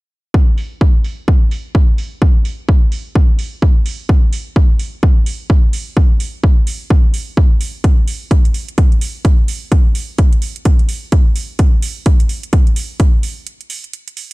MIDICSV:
0, 0, Header, 1, 2, 480
1, 0, Start_track
1, 0, Tempo, 468750
1, 349, Time_signature, 4, 2, 24, 8
1, 14680, End_track
2, 0, Start_track
2, 0, Title_t, "Drums"
2, 350, Note_on_c, 9, 36, 108
2, 452, Note_off_c, 9, 36, 0
2, 590, Note_on_c, 9, 46, 98
2, 692, Note_off_c, 9, 46, 0
2, 830, Note_on_c, 9, 36, 110
2, 933, Note_off_c, 9, 36, 0
2, 1070, Note_on_c, 9, 46, 83
2, 1172, Note_off_c, 9, 46, 0
2, 1310, Note_on_c, 9, 36, 112
2, 1413, Note_off_c, 9, 36, 0
2, 1549, Note_on_c, 9, 46, 97
2, 1652, Note_off_c, 9, 46, 0
2, 1790, Note_on_c, 9, 36, 107
2, 1893, Note_off_c, 9, 36, 0
2, 2029, Note_on_c, 9, 46, 83
2, 2132, Note_off_c, 9, 46, 0
2, 2270, Note_on_c, 9, 36, 113
2, 2373, Note_off_c, 9, 36, 0
2, 2509, Note_on_c, 9, 46, 96
2, 2611, Note_off_c, 9, 46, 0
2, 2750, Note_on_c, 9, 36, 113
2, 2853, Note_off_c, 9, 36, 0
2, 2989, Note_on_c, 9, 46, 84
2, 3091, Note_off_c, 9, 46, 0
2, 3230, Note_on_c, 9, 36, 113
2, 3333, Note_off_c, 9, 36, 0
2, 3469, Note_on_c, 9, 46, 101
2, 3571, Note_off_c, 9, 46, 0
2, 3710, Note_on_c, 9, 36, 109
2, 3813, Note_off_c, 9, 36, 0
2, 3950, Note_on_c, 9, 46, 89
2, 4052, Note_off_c, 9, 46, 0
2, 4190, Note_on_c, 9, 36, 115
2, 4293, Note_off_c, 9, 36, 0
2, 4430, Note_on_c, 9, 46, 105
2, 4532, Note_off_c, 9, 46, 0
2, 4670, Note_on_c, 9, 36, 114
2, 4772, Note_off_c, 9, 36, 0
2, 4909, Note_on_c, 9, 46, 85
2, 5012, Note_off_c, 9, 46, 0
2, 5150, Note_on_c, 9, 36, 121
2, 5252, Note_off_c, 9, 36, 0
2, 5389, Note_on_c, 9, 46, 106
2, 5492, Note_off_c, 9, 46, 0
2, 5630, Note_on_c, 9, 36, 113
2, 5732, Note_off_c, 9, 36, 0
2, 5869, Note_on_c, 9, 46, 91
2, 5971, Note_off_c, 9, 46, 0
2, 6110, Note_on_c, 9, 36, 112
2, 6212, Note_off_c, 9, 36, 0
2, 6349, Note_on_c, 9, 46, 102
2, 6452, Note_off_c, 9, 46, 0
2, 6590, Note_on_c, 9, 36, 113
2, 6692, Note_off_c, 9, 36, 0
2, 6829, Note_on_c, 9, 46, 85
2, 6931, Note_off_c, 9, 46, 0
2, 7070, Note_on_c, 9, 36, 118
2, 7172, Note_off_c, 9, 36, 0
2, 7309, Note_on_c, 9, 46, 101
2, 7411, Note_off_c, 9, 46, 0
2, 7550, Note_on_c, 9, 36, 117
2, 7652, Note_off_c, 9, 36, 0
2, 7789, Note_on_c, 9, 46, 90
2, 7891, Note_off_c, 9, 46, 0
2, 8029, Note_on_c, 9, 36, 107
2, 8029, Note_on_c, 9, 42, 66
2, 8132, Note_off_c, 9, 36, 0
2, 8132, Note_off_c, 9, 42, 0
2, 8269, Note_on_c, 9, 46, 97
2, 8372, Note_off_c, 9, 46, 0
2, 8509, Note_on_c, 9, 36, 112
2, 8510, Note_on_c, 9, 42, 69
2, 8612, Note_off_c, 9, 36, 0
2, 8612, Note_off_c, 9, 42, 0
2, 8654, Note_on_c, 9, 42, 48
2, 8749, Note_on_c, 9, 46, 84
2, 8757, Note_off_c, 9, 42, 0
2, 8851, Note_off_c, 9, 46, 0
2, 8893, Note_on_c, 9, 42, 49
2, 8989, Note_off_c, 9, 42, 0
2, 8989, Note_on_c, 9, 36, 113
2, 8989, Note_on_c, 9, 42, 69
2, 9091, Note_off_c, 9, 42, 0
2, 9092, Note_off_c, 9, 36, 0
2, 9134, Note_on_c, 9, 42, 32
2, 9230, Note_on_c, 9, 46, 95
2, 9237, Note_off_c, 9, 42, 0
2, 9332, Note_off_c, 9, 46, 0
2, 9469, Note_on_c, 9, 36, 108
2, 9469, Note_on_c, 9, 42, 73
2, 9572, Note_off_c, 9, 36, 0
2, 9572, Note_off_c, 9, 42, 0
2, 9709, Note_on_c, 9, 46, 87
2, 9812, Note_off_c, 9, 46, 0
2, 9950, Note_on_c, 9, 36, 108
2, 9950, Note_on_c, 9, 42, 73
2, 10052, Note_off_c, 9, 36, 0
2, 10052, Note_off_c, 9, 42, 0
2, 10189, Note_on_c, 9, 46, 95
2, 10291, Note_off_c, 9, 46, 0
2, 10429, Note_on_c, 9, 42, 71
2, 10430, Note_on_c, 9, 36, 108
2, 10531, Note_off_c, 9, 42, 0
2, 10532, Note_off_c, 9, 36, 0
2, 10573, Note_on_c, 9, 42, 50
2, 10668, Note_on_c, 9, 46, 81
2, 10676, Note_off_c, 9, 42, 0
2, 10771, Note_off_c, 9, 46, 0
2, 10813, Note_on_c, 9, 42, 50
2, 10909, Note_off_c, 9, 42, 0
2, 10909, Note_on_c, 9, 42, 70
2, 10910, Note_on_c, 9, 36, 110
2, 11011, Note_off_c, 9, 42, 0
2, 11012, Note_off_c, 9, 36, 0
2, 11052, Note_on_c, 9, 42, 33
2, 11148, Note_on_c, 9, 46, 97
2, 11155, Note_off_c, 9, 42, 0
2, 11250, Note_off_c, 9, 46, 0
2, 11388, Note_on_c, 9, 42, 74
2, 11390, Note_on_c, 9, 36, 109
2, 11491, Note_off_c, 9, 42, 0
2, 11492, Note_off_c, 9, 36, 0
2, 11628, Note_on_c, 9, 46, 84
2, 11731, Note_off_c, 9, 46, 0
2, 11868, Note_on_c, 9, 42, 75
2, 11869, Note_on_c, 9, 36, 105
2, 11970, Note_off_c, 9, 42, 0
2, 11972, Note_off_c, 9, 36, 0
2, 12108, Note_on_c, 9, 46, 97
2, 12211, Note_off_c, 9, 46, 0
2, 12348, Note_on_c, 9, 42, 75
2, 12349, Note_on_c, 9, 36, 110
2, 12450, Note_off_c, 9, 42, 0
2, 12452, Note_off_c, 9, 36, 0
2, 12492, Note_on_c, 9, 42, 52
2, 12588, Note_on_c, 9, 46, 83
2, 12595, Note_off_c, 9, 42, 0
2, 12691, Note_off_c, 9, 46, 0
2, 12733, Note_on_c, 9, 42, 52
2, 12829, Note_off_c, 9, 42, 0
2, 12829, Note_on_c, 9, 36, 112
2, 12829, Note_on_c, 9, 42, 75
2, 12931, Note_off_c, 9, 42, 0
2, 12932, Note_off_c, 9, 36, 0
2, 12974, Note_on_c, 9, 42, 35
2, 13068, Note_on_c, 9, 46, 94
2, 13076, Note_off_c, 9, 42, 0
2, 13170, Note_off_c, 9, 46, 0
2, 13309, Note_on_c, 9, 36, 108
2, 13309, Note_on_c, 9, 42, 76
2, 13411, Note_off_c, 9, 42, 0
2, 13412, Note_off_c, 9, 36, 0
2, 13549, Note_on_c, 9, 46, 85
2, 13651, Note_off_c, 9, 46, 0
2, 13789, Note_on_c, 9, 42, 78
2, 13891, Note_off_c, 9, 42, 0
2, 13933, Note_on_c, 9, 42, 37
2, 14028, Note_on_c, 9, 46, 98
2, 14036, Note_off_c, 9, 42, 0
2, 14130, Note_off_c, 9, 46, 0
2, 14173, Note_on_c, 9, 42, 37
2, 14269, Note_off_c, 9, 42, 0
2, 14269, Note_on_c, 9, 42, 77
2, 14371, Note_off_c, 9, 42, 0
2, 14414, Note_on_c, 9, 42, 52
2, 14509, Note_on_c, 9, 46, 84
2, 14516, Note_off_c, 9, 42, 0
2, 14611, Note_off_c, 9, 46, 0
2, 14680, End_track
0, 0, End_of_file